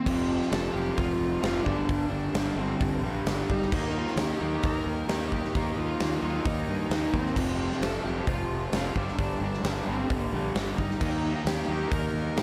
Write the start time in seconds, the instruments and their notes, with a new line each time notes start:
Already playing: lead electric guitar C4
0.06 fingered electric bass F1, overdriven electric guitar F2 C3 F3, kick, crash
0.41 snare
0.50 fingered electric bass F1, lead electric guitar A4, snare, open hi-hat
0.73 fingered electric bass F1, overdriven electric guitar F2 C3 F3, lead electric guitar G4
0.97 fingered electric bass F1, overdriven electric guitar F2 C3 F3, lead electric guitar F4, kick, open hi-hat
1.19 fingered electric bass F1
1.42 fingered electric bass F1, overdriven electric guitar F2 C3, lead electric guitar F4, snare, open hi-hat
1.46 overdriven electric guitar F3
1.64 fingered electric bass G1, overdriven electric guitar G2, lead electric guitar D4, kick
1.68 overdriven electric guitar D3 G3
1.89 fingered electric bass G1, kick, open hi-hat
2.09 fingered electric bass G1, lead electric guitar D4
2.33 fingered electric bass G1, overdriven electric guitar G2 D3, snare, open hi-hat
2.38 overdriven electric guitar G3
2.56 fingered electric bass G1, overdriven electric guitar G2 D3 G3, lead electric guitar C4
2.80 fingered electric bass G1, kick, open hi-hat
3.01 fingered electric bass A#1, overdriven electric guitar D3 G3
3.06 overdriven electric guitar G2
3.25 fingered electric bass G1, snare, open hi-hat
3.50 fingered electric bass G1, lead electric guitar D#4, kick
3.62 snare
3.72 fingered electric bass D#2, overdriven electric guitar D#3 A#3 D#4, kick, crash
3.90 lead electric guitar D#4
3.99 lead electric guitar F4
4.07 snare
4.16 fingered electric bass D#2, snare, open hi-hat
4.20 lead electric guitar G4
4.40 fingered electric bass D#2, overdriven electric guitar A#3 D#4, lead electric guitar G4
4.44 overdriven electric guitar D#3
4.63 fingered electric bass D#2, overdriven electric guitar D#3 A#3 D#4, kick, open hi-hat
4.67 lead electric guitar A#4
4.86 fingered electric bass D#2
5.08 fingered electric bass D#2, overdriven electric guitar D#3 A#3 D#4, lead electric guitar G4, snare, open hi-hat
5.32 lead electric guitar G4, kick
5.44 snare
5.53 fingered electric bass D#2, overdriven electric guitar D#3 A#3 D#4, kick, open hi-hat
5.77 fingered electric bass D#2, lead electric guitar F4
6.00 fingered electric bass D#2, snare, open hi-hat
6.22 fingered electric bass D#2, overdriven electric guitar D#3 A#3 D#4, lead electric guitar F4
6.44 fingered electric bass D#2, overdriven electric guitar D#3 A#3 D#4, lead electric guitar D#4, kick, open hi-hat
6.68 fingered electric bass G2
6.89 fingered electric bass D#2, overdriven electric guitar D#3 A#3, snare, open hi-hat
6.94 overdriven electric guitar D#4
7.13 fingered electric bass D#2, lead electric guitar C4, kick
7.26 snare
7.34 fingered electric bass F1, overdriven electric guitar F2 C3 F3, analog synth pad F4 C5 A5, kick, crash
7.72 snare
7.81 fingered electric bass F1, lead electric guitar A4, snare, open hi-hat
8.02 fingered electric bass F1, overdriven electric guitar F2 C3 F3, lead electric guitar G4
8.26 fingered electric bass F1, overdriven electric guitar F2 C3 F3, lead electric guitar F4, kick, open hi-hat
8.50 fingered electric bass F1
8.72 fingered electric bass F1, overdriven electric guitar F2 C3, lead electric guitar F4, snare, open hi-hat
8.76 overdriven electric guitar F3
8.95 fingered electric bass G1, overdriven electric guitar G2 D3 G3, lead electric guitar D4, analog synth pad G4 D5 A#5, kick
9.08 snare
9.18 fingered electric bass G1, lead electric guitar D4, kick, open hi-hat
9.41 fingered electric bass G1, lead electric guitar D4
9.53 snare
9.63 fingered electric bass G1, overdriven electric guitar G2 D3 G3, snare, open hi-hat
9.87 fingered electric bass G1, overdriven electric guitar G2 D3 G3, lead electric guitar C4
10.10 fingered electric bass G1, kick, open hi-hat
10.33 fingered electric bass A#1, overdriven electric guitar G2 D3 G3
10.55 fingered electric bass G1, snare, open hi-hat
10.78 fingered electric bass G1, lead electric guitar D#4, kick
10.91 snare
11.00 fingered electric bass D#2, overdriven electric guitar D#3 A#3 D#4, analog synth pad D#5, kick, crash
11.45 fingered electric bass D#2, lead electric guitar G4, snare, open hi-hat
11.68 fingered electric bass D#2, overdriven electric guitar A#3 D#4, lead electric guitar G4
11.73 overdriven electric guitar D#3
11.92 fingered electric bass D#2, overdriven electric guitar D#3 A#3 D#4, lead electric guitar A#4, kick, open hi-hat
12.14 fingered electric bass D#2
12.36 fingered electric bass A2, overdriven electric guitar D#3 A#3 D#4, lead electric guitar G4, snare, open hi-hat